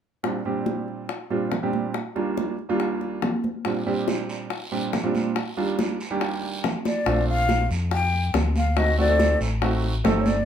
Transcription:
0.23 grand piano A#2 G3 C4 D4 F4, high bongo, high conga
0.45 grand piano A#2 G3 C4 D4 G4, high conga
0.66 high bongo, high conga
0.88 high conga
1.09 high bongo, high conga
1.30 grand piano A#2 G3 C4 D4 F4, high conga
1.52 high bongo, low bongo, high conga
1.63 grand piano A#2 G3 C4 D4 G4
1.73 high conga
1.94 high bongo, high conga
2.15 grand piano D#2 G3 A#3 D4 F4, high bongo, high conga
2.37 high bongo, high conga
2.59 high conga
2.69 grand piano D#2 G3 A#3 D4 F4
2.80 high bongo, high conga
3.01 high bongo, high conga
3.22 high bongo, low bongo, high conga
3.44 high bongo, high conga
3.65 grand piano A#2 G3 C4 D4 F4, high bongo, high conga, long guiro
3.86 grand piano A#2 G3 C4 D4 G4, high conga
4.08 high bongo, high conga, short guiro
4.29 high conga, short guiro
4.50 high bongo, high conga, long guiro
4.71 grand piano A#2 G3 C4 D4 G4, high conga
4.93 high bongo, low bongo, high conga, short guiro
5.03 grand piano A#2 G3 C4 D4 F4
5.15 high conga, short guiro
5.36 high bongo, high conga, long guiro
5.57 grand piano D#2 G3 A#3 D4 F4, high bongo, high conga
5.79 high bongo, high conga, short guiro
6.00 high conga, short guiro
6.10 grand piano D#2 G3 A#3 D4 G4
6.21 high bongo, high conga, long guiro
6.43 high bongo, high conga
6.64 high bongo, low bongo, high conga, short guiro
6.85 flute D5, high bongo, high conga, short guiro
7.06 fingered electric bass A#1, grand piano A3 C4 D4 F4, high bongo, high conga, long guiro
7.28 flute F5, high conga
7.49 high bongo, high conga, short guiro
7.70 fingered electric bass F2, high conga, short guiro
7.91 flute G5, high bongo, high conga, long guiro
8.13 high conga
8.34 fingered electric bass D2, high bongo, low bongo, high conga, short guiro
8.56 flute F5, high conga, short guiro
8.77 grand piano A3 C4 D#4 F#4, flute D#5, high bongo, high conga, long guiro
8.98 grand piano A3 C4 D#4 F#4, flute D5, high bongo, high conga
9.09 grand piano A3 C4 D#4 A4
9.19 high bongo, high conga, short guiro
9.40 fingered electric bass A1, high conga, short guiro
9.62 grand piano A3 C4 D#4 F#4, high bongo, high conga, long guiro
9.84 high bongo, high conga
10.04 fingered electric bass G1, grand piano A3 C4 D#4 A4, high bongo, low bongo, high conga, short guiro
10.20 flute C#5
10.26 flute D5, high bongo, high conga, short guiro

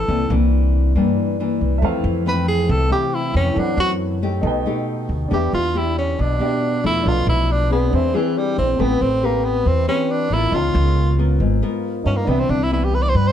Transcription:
Already playing: tenor saxophone A4
0.08 upright bass C2, nylon-string guitar C3 E3 A#3 D4
0.30 upright bass C2, nylon-string guitar E3 A#3 D4
0.95 upright bass G2, nylon-string guitar G2 E3 A#3 D4
1.40 nylon-string guitar E3 A#3 D4
1.61 upright bass C2
1.78 grand piano A4 E5
1.82 upright bass F2, nylon-string guitar F2 E3 A3 C4, grand piano C5 F5
2.04 upright bass F2
2.26 nylon-string guitar E3 A3 C4, tenor saxophone B4
2.49 tenor saxophone G#4
2.69 upright bass C2, nylon-string guitar C3, tenor saxophone A4
2.89 nylon-string guitar E3 A3 C4, tenor saxophone G4, grand piano A4 C5 E5 F5
3.15 tenor saxophone E4
3.34 upright bass F2, nylon-string guitar E3 A3 C4, tenor saxophone C#4
3.53 upright bass F#2, nylon-string guitar F#2, grand piano E4 A4
3.57 tenor saxophone D4, grand piano C5 F#5
3.77 upright bass F#2, tenor saxophone F#4
4.22 nylon-string guitar A3 D#4 G4
4.41 upright bass B1, nylon-string guitar B2, grand piano D#4 A4 B4
4.47 grand piano G5
4.66 nylon-string guitar A3 D#4 G4
5.09 upright bass D2
5.28 upright bass E2, nylon-string guitar E3 B3 D4 G4, grand piano D4 G4
5.33 tenor saxophone G4, grand piano B4 E5
5.53 upright bass E2, tenor saxophone F4
5.75 nylon-string guitar B3 D4 G4, tenor saxophone E4
5.98 tenor saxophone C#4
6.18 upright bass B1, nylon-string guitar B2, tenor saxophone D4
6.39 nylon-string guitar B3 D4 G4, grand piano D4 G4 B4 E5
6.84 upright bass E2, nylon-string guitar F3 A3 D4, tenor saxophone E4
7.03 upright bass B1, nylon-string guitar B2, grand piano D4 A4 B4
7.08 tenor saxophone F4, grand piano F5
7.27 upright bass B1, tenor saxophone E4
7.52 tenor saxophone D4
7.70 tenor saxophone B3, nylon-string guitar C4 D4 G#4
7.90 upright bass E2, nylon-string guitar E3, grand piano D4 G#4 C5
7.95 tenor saxophone C4, grand piano E5
8.14 tenor saxophone E3, nylon-string guitar C4 D4 G#4
8.38 tenor saxophone G3
8.58 upright bass A#1, tenor saxophone C4
8.76 upright bass A1, nylon-string guitar A3 C4 G4 B4, grand piano C4 A4 B4
8.81 tenor saxophone B3, grand piano G5
9.01 upright bass A1, tenor saxophone C4
9.23 tenor saxophone A#3, nylon-string guitar C4 G4 B4
9.45 tenor saxophone B3
9.66 upright bass E2, nylon-string guitar E3, tenor saxophone C4
9.88 nylon-string guitar C4 G4 B4, tenor saxophone C#4
10.11 tenor saxophone D4
10.30 upright bass A1, nylon-string guitar B3 F4 A#4, tenor saxophone E4
10.51 upright bass C#2, nylon-string guitar C#3, grand piano D#4 A#4, tenor saxophone F4
10.56 grand piano F5
10.75 upright bass C#2
11.18 nylon-string guitar B3 F4 A#4
11.40 upright bass G#1, nylon-string guitar G#2
11.62 nylon-string guitar B3 F4 A#4
12.03 upright bass G2, tenor saxophone C#4, grand piano D#4 A#4 B4 F5
12.17 tenor saxophone A#3
12.24 upright bass C2, nylon-string guitar C3 E3 B3 D4, tenor saxophone B3, grand piano D4 B4
12.29 grand piano C4 E5
12.39 tenor saxophone C4
12.49 upright bass C2, tenor saxophone D4
12.63 tenor saxophone E4
12.71 nylon-string guitar E3 B3 D4, tenor saxophone E4
12.84 tenor saxophone G4
12.95 tenor saxophone B4
13.02 tenor saxophone D5
13.09 tenor saxophone C5
13.14 upright bass G2, nylon-string guitar G2, tenor saxophone B4
13.28 tenor saxophone C5

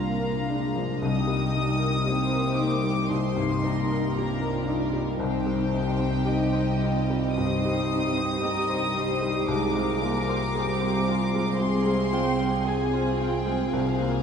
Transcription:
Already playing: grand piano C2 A#2 F3 D4 F4 A#4, cello section C2, harp C3 A#3 C4 D4 F4, viola section A#3, violin section F4 F5 A#5
0.20 harp D4, grand piano A#4
0.49 viola section G#3, harp C4, grand piano D4
0.75 grand piano F3, harp D4
1.02 grand piano C2, cello section C2, harp C3, viola section G3 D#4, violin section G4 D#5 D#6
1.27 grand piano G3, harp D#4
1.54 viola section G3, harp G3, grand piano D#4
1.80 harp D#4, grand piano A#4
2.05 harp A#3, viola section C4 D#4, grand piano G4, violin section G4 C5
2.32 harp D#4, grand piano A#4
2.58 harp G3, viola section A#3, grand piano D#4, violin section D6
2.84 grand piano G3, harp D#4
3.10 grand piano C2, harp C3, viola section D#4 G4, violin section C5 C6
3.36 grand piano G2, harp A#3
3.62 harp G3, grand piano D#4, violin section A#4
3.89 harp D#4, grand piano A#4
4.15 harp A#3, viola section D4 F4, grand piano G4, violin section G4 A#4 A#5
4.41 harp D#4, grand piano A#4
4.68 harp G3, grand piano D#4, violin section A#4
4.93 grand piano G3, harp D#4
5.20 grand piano C2, cello section C2, harp C3, viola section C4 D#4, violin section G4 C5 G5
5.46 grand piano G3, harp D#4
5.73 harp G3, viola section C4, grand piano D#4
5.99 harp D#4, grand piano C5
6.25 harp C4, viola section D#4, grand piano G4, violin section D#5
6.52 harp D#4, grand piano C5
6.81 harp G3, grand piano D#4, viola section F4
7.09 grand piano G3, harp D#4
7.36 grand piano G2, harp G3, viola section G4, violin section C5 D#5 D#6
7.64 grand piano G3, harp D#4
7.91 harp G3, grand piano D#4
8.16 harp D#4, grand piano C5
8.42 viola section G3, harp C4, grand piano G4, violin section A#4 D#5
8.69 harp D#4, grand piano C5
8.95 harp G3, grand piano D#4, violin section C5
9.22 grand piano G3, harp D#4
9.48 grand piano C2, cello section C2, harp C3, viola section G#3, violin section A#4 C5 D6
9.75 grand piano G#3, harp F4
10.02 harp G#3, viola section A#3, grand piano F4
10.29 harp F4, grand piano C5
10.55 harp C4, viola section C4 G4, grand piano G#4
10.81 harp F4, grand piano C5
11.08 harp G#3, grand piano F4, viola section F4
11.33 grand piano G#3, harp F4
11.59 grand piano C3, harp G#3, viola section G#4, violin section G#4 C6
11.86 grand piano G#3, harp F4
12.12 harp G#3, grand piano F4, viola section G5
12.39 harp F4, grand piano C5
12.66 harp C4, viola section F4, grand piano G#4, violin section G#5
12.93 harp F4, grand piano C5
13.20 harp G#3, grand piano F4, violin section G5
13.46 grand piano G#3, harp F4
13.73 grand piano C2, cello section C2, harp C3, viola section F4, violin section C5 F5
13.99 grand piano A#3, harp F4

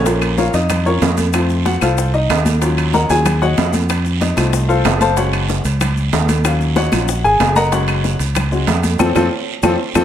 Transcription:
Already playing: fingered electric bass A#1
0.05 upright piano A#3 C#4 F4, high bongo, high conga, high timbale, long guiro, maracas
0.22 high bongo, high conga, high timbale, claves, maracas
0.38 upright piano F4 A#4 C#5 F5, high bongo, high conga, low timbale, short guiro, maracas
0.53 fingered electric bass F2, upright piano D#4 D#5, high bongo, high timbale, short guiro, maracas
0.70 high bongo, high conga, low conga, high timbale, long guiro, claves, maracas
0.86 upright piano C#4 F4 A#4 C#5, high conga, maracas
1.01 fingered electric bass F2, high bongo, low bongo, high conga, high timbale, low timbale, short guiro, maracas
1.17 high bongo, high conga, high timbale, short guiro, maracas
1.33 upright piano A3 C4 F4, high bongo, high conga, high timbale, long guiro, claves, maracas
1.50 high bongo, high conga, maracas
1.66 upright piano F#4 F#5, high bongo, high conga, high timbale, low timbale, short guiro, maracas
1.81 fingered electric bass C2, upright piano F4 A4 C5 F5, high bongo, high conga, high timbale, short guiro, claves, maracas
1.98 high bongo, high conga, long guiro, maracas
2.14 upright piano D#4 D#5, high conga, maracas
2.29 fingered electric bass D#2, high bongo, low bongo, high conga, high timbale, low timbale, short guiro, claves, maracas
2.46 high bongo, high conga, high timbale, short guiro, maracas
2.62 upright piano F#3 C#4 F4, high bongo, high conga, high timbale, long guiro, maracas
2.78 high bongo, high conga, high timbale, claves, maracas
2.94 upright piano A#4 D#5 F#5 A#5, high bongo, high conga, low timbale, short guiro, maracas
3.10 fingered electric bass D#2, upright piano F#3 C#4 F4 G#4 G#5, high bongo, high timbale, short guiro, maracas
3.25 high bongo, high conga, low conga, high timbale, long guiro, claves, maracas
3.42 upright piano F#4 C#5 D#5 F#5, high conga, low conga, maracas
3.57 fingered electric bass F2, high bongo, low bongo, high conga, high timbale, low timbale, short guiro, maracas
3.73 high bongo, high conga, high timbale, short guiro, maracas
3.89 high bongo, high conga, high timbale, long guiro, claves, maracas
4.05 high bongo, high conga, maracas
4.21 upright piano D#4 D#5, high bongo, high conga, high timbale, low timbale, short guiro, maracas
4.36 fingered electric bass C2, upright piano A3 C4 F4, high bongo, high conga, high timbale, short guiro, claves, maracas
4.53 high bongo, high conga, long guiro, maracas
4.69 upright piano F4 A4 C5 F5, high conga, maracas
4.85 fingered electric bass F#1, high bongo, low bongo, high conga, high timbale, low timbale, short guiro, claves, maracas
5.01 upright piano A4 C5 F5 A5, high bongo, high conga, high timbale, short guiro, maracas
5.16 upright piano G#3 C#4 F#4 C#5 F#5, high bongo, high timbale, long guiro, maracas
5.33 high bongo, high conga, high timbale, claves, maracas
5.49 high bongo, high conga, low timbale, short guiro, maracas
5.64 fingered electric bass C#2, high bongo, high timbale, short guiro, maracas
5.81 high bongo, high conga, low conga, high timbale, long guiro, claves, maracas
5.97 high conga, maracas
6.13 fingered electric bass D#2, high bongo, low bongo, high conga, high timbale, low timbale, short guiro, maracas
6.29 high bongo, high conga, high timbale, short guiro, maracas
6.44 upright piano F#3 C#4 F5, high bongo, high conga, high timbale, long guiro, claves, maracas
6.61 high bongo, high conga, maracas
6.76 upright piano F#4 C#5 D#5 F#5, high bongo, high conga, high timbale, low timbale, short guiro, maracas
6.92 fingered electric bass A#1, upright piano F#3 C#4 F4, high bongo, high conga, high timbale, short guiro, claves, maracas
7.08 high bongo, high conga, long guiro, maracas
7.24 fingered electric bass G#1, upright piano G#4 G#5, high conga, maracas
7.40 fingered electric bass F#1, high bongo, low bongo, high conga, high timbale, low timbale, short guiro, claves, maracas
7.56 upright piano A#4 D#5 F#5 A#5, high bongo, high conga, high timbale, short guiro, maracas
7.72 upright piano G#3 C#4 F#4 C#5 F#5, high bongo, high conga, high timbale, long guiro, maracas
7.88 high bongo, high conga, high timbale, claves, maracas
8.04 high bongo, high conga, low timbale, short guiro, maracas
8.19 fingered electric bass C#2, high bongo, high timbale, short guiro, maracas
8.35 high bongo, high conga, low conga, high timbale, long guiro, claves, maracas
8.52 upright piano G#3 C#4 F#4, high conga, maracas
8.67 fingered electric bass F2, high bongo, low bongo, high conga, high timbale, low timbale, short guiro, maracas
8.83 high bongo, high conga, high timbale, short guiro, maracas
8.99 fingered electric bass F2, upright piano C4 F4 A4, low bongo, high conga, high timbale, long guiro, claves, maracas
9.15 fingered electric bass F2, upright piano C4 F4 A4, low bongo, high conga, high timbale, long guiro, claves, maracas
9.63 fingered electric bass F2, upright piano C4 F4 A4, low bongo, high conga, high timbale, long guiro, claves, maracas
9.95 fingered electric bass F2, upright piano C4 F4 A4, low bongo, high conga, high timbale, long guiro, claves, maracas

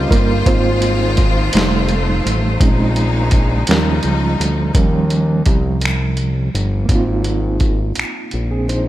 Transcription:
Already playing: string section C#3 G3 F4 C5, reed electric piano G3 C4 C#4 D#4 F4 D#5
0.11 analog synth bass G1, reed electric piano A#3 A#4, kick, closed hi-hat
0.46 analog synth bass G#1, string section D#3 G#3, reed electric piano A#3 C4 F4 C5, kick, closed hi-hat
0.82 closed hi-hat
1.17 kick, closed hi-hat
1.53 analog synth bass F1, reed electric piano G3 A3 D#4, string section A3, closed hi-hat
1.57 snare
1.89 closed hi-hat
2.26 analog synth bass A1, closed hi-hat
2.61 analog synth bass A#1, string section C#3 G#3 D#4, reed electric piano G#3 C4 C#4 D#4, kick, closed hi-hat
2.96 closed hi-hat
3.31 kick, closed hi-hat
3.67 analog synth bass D#2, string section F3 G3 D#4, reed electric piano F3 G3 C#4, closed hi-hat
3.71 snare
4.03 analog synth bass C#2, closed hi-hat
4.40 analog synth bass D2, closed hi-hat
4.75 analog synth bass D#2, reed electric piano F3 G3 C#4, kick, closed hi-hat
5.10 closed hi-hat
5.46 analog synth bass C2, kick, closed hi-hat
5.81 closed hi-hat
5.85 finger snap
6.17 closed hi-hat
6.55 analog synth bass G1, closed hi-hat
6.85 reed electric piano A#3 C4, kick, closed hi-hat
6.89 analog synth bass G#1, reed electric piano D#4
6.95 reed electric piano F4
7.24 closed hi-hat
7.60 kick, closed hi-hat
7.95 analog synth bass A#1, closed hi-hat
7.99 finger snap
8.31 analog synth bass A#1, closed hi-hat
8.51 reed electric piano C4 G#4
8.69 reed electric piano D#4 C5, closed hi-hat

